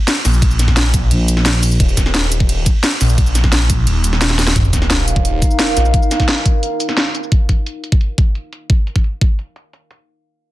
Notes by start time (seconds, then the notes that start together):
0.08 snare, closed hi-hat, ride bell
0.25 A#1, snare, open hi-hat, ride bell, shaker
0.34 shaker
0.42 kick, closed hi-hat, ride bell
0.51 shaker
0.59 snare, closed hi-hat, ride bell, shaker
0.68 kick, snare
0.77 snare, closed hi-hat, ride bell
0.94 kick, closed hi-hat, ride bell, shaker
1.11 A#1, closed hi-hat, ride bell
1.28 closed hi-hat, ride bell, shaker
1.37 snare
1.46 snare, closed hi-hat, ride bell
1.63 open hi-hat, ride bell, shaker
1.71 shaker
1.80 D#1, kick, closed hi-hat, ride bell
1.89 shaker
1.97 kick, snare, closed hi-hat, ride bell, shaker
2.06 snare
2.15 snare, closed hi-hat, ride bell
2.32 closed hi-hat, ride bell, shaker
2.40 kick
2.49 closed hi-hat, ride bell
2.66 kick, closed hi-hat, ride bell, shaker
2.84 snare, closed hi-hat, ride bell
3.01 A#1, snare, open hi-hat, ride bell, shaker
3.09 shaker
3.18 kick, closed hi-hat, ride bell
3.27 shaker
3.35 snare, closed hi-hat, ride bell, shaker
3.44 kick, snare
3.52 snare, closed hi-hat, ride bell
3.70 kick, closed hi-hat, ride bell, shaker
3.87 D#1, closed hi-hat, ride bell
4.04 closed hi-hat, ride bell, shaker
4.13 snare
4.21 snare, closed hi-hat, ride bell
4.30 snare
4.39 snare, open hi-hat, ride bell, shaker
4.47 snare, shaker
4.56 D#1 D#4 A#4 F5, kick, closed hi-hat, sub drop
4.65 shaker
4.73 kick, snare, closed hi-hat, shaker
4.82 snare
4.90 snare, closed hi-hat
5.08 closed hi-hat, shaker
5.16 kick
5.25 closed hi-hat
5.42 kick, closed hi-hat, shaker
5.51 shaker
5.59 snare, closed hi-hat
5.77 A#1, snare, closed hi-hat, shaker
5.85 shaker
5.94 kick, closed hi-hat
6.03 shaker
6.11 snare, closed hi-hat, shaker
6.20 kick, snare
6.28 snare, closed hi-hat
6.46 kick, closed hi-hat, shaker
6.63 closed hi-hat
6.80 closed hi-hat, shaker
6.89 snare, shaker
6.97 snare, closed hi-hat
7.15 closed hi-hat, shaker
7.23 shaker
7.32 kick, closed hi-hat
7.49 kick, closed hi-hat
7.66 closed hi-hat
7.84 closed hi-hat
7.92 kick
8.01 closed hi-hat
8.18 kick, closed hi-hat
8.35 closed hi-hat
8.53 closed hi-hat
8.70 kick, closed hi-hat
8.87 closed hi-hat
8.96 kick
9.04 closed hi-hat
9.21 kick, closed hi-hat
9.39 closed hi-hat
9.56 closed hi-hat
9.73 closed hi-hat
9.91 closed hi-hat